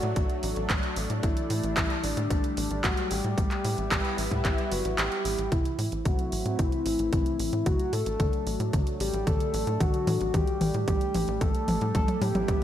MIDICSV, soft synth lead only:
0, 0, Header, 1, 2, 480
1, 0, Start_track
1, 0, Tempo, 535714
1, 1105, Time_signature, 4, 2, 24, 8
1, 11322, End_track
2, 0, Start_track
2, 0, Title_t, "Soft synth lead"
2, 0, Program_c, 0, 80
2, 0, Note_on_c, 0, 66, 115
2, 625, Note_off_c, 0, 66, 0
2, 1105, Note_on_c, 0, 64, 113
2, 1822, Note_on_c, 0, 62, 97
2, 1836, Note_off_c, 0, 64, 0
2, 2295, Note_off_c, 0, 62, 0
2, 2301, Note_on_c, 0, 62, 96
2, 2539, Note_on_c, 0, 66, 109
2, 2553, Note_off_c, 0, 62, 0
2, 2780, Note_on_c, 0, 67, 121
2, 2793, Note_off_c, 0, 66, 0
2, 4217, Note_off_c, 0, 67, 0
2, 4222, Note_on_c, 0, 66, 88
2, 4464, Note_on_c, 0, 67, 101
2, 4477, Note_off_c, 0, 66, 0
2, 4944, Note_on_c, 0, 64, 108
2, 4957, Note_off_c, 0, 67, 0
2, 5417, Note_off_c, 0, 64, 0
2, 5422, Note_on_c, 0, 66, 96
2, 5902, Note_on_c, 0, 64, 96
2, 5916, Note_off_c, 0, 66, 0
2, 6378, Note_off_c, 0, 64, 0
2, 6384, Note_on_c, 0, 64, 102
2, 6865, Note_on_c, 0, 66, 118
2, 6878, Note_off_c, 0, 64, 0
2, 7104, Note_on_c, 0, 69, 112
2, 7118, Note_off_c, 0, 66, 0
2, 7825, Note_off_c, 0, 69, 0
2, 8066, Note_on_c, 0, 67, 103
2, 8305, Note_on_c, 0, 69, 114
2, 8319, Note_off_c, 0, 67, 0
2, 8786, Note_on_c, 0, 66, 118
2, 8799, Note_off_c, 0, 69, 0
2, 9265, Note_on_c, 0, 67, 103
2, 9278, Note_off_c, 0, 66, 0
2, 9739, Note_off_c, 0, 67, 0
2, 9745, Note_on_c, 0, 67, 99
2, 10223, Note_on_c, 0, 69, 107
2, 10236, Note_off_c, 0, 67, 0
2, 10699, Note_off_c, 0, 69, 0
2, 10704, Note_on_c, 0, 69, 118
2, 10944, Note_on_c, 0, 67, 97
2, 10957, Note_off_c, 0, 69, 0
2, 11322, Note_off_c, 0, 67, 0
2, 11322, End_track
0, 0, End_of_file